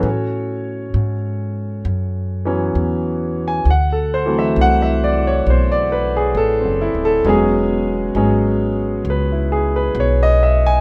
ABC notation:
X:1
M:4/4
L:1/16
Q:"Swing" 1/4=67
K:Elyd
V:1 name="Grand piano"
c4- c z8 z2 g | f =A =c e f e =d ^c =c d B G A =C E A | G2 z6 B E G B c d e g |]
V:2 name="Grand piano"
[CF=A]4 z6 [E,F,B,C]2 z4 | z2 [E,F,=A,=C]2 z12 | [F,G,B,C]2 z2 [F,G,B,C]2 z8 z2 |]
V:3 name="Upright bass" clef=bass
=A,,4 G,,4 F,,4 E,,4 | =D,,4 =C,,4 B,,,4 (3=A,,,2 F,,,2 =D,,,2 | E,,,4 G,,,4 C,,4 B,,,4 |]